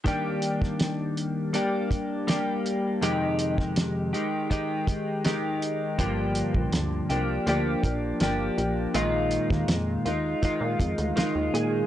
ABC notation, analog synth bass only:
X:1
M:4/4
L:1/16
Q:1/4=81
K:Eb
V:1 name="Analog synth bass" clef=bass
z16 | z16 | G,,,3 B,,, D,,2 C,,2 D,,2 B,,,2 G,,,2 B,,,2 | B,,,3 E,, F,,2 E,,2 z B,, F,, D,, z E,, B,,2 |]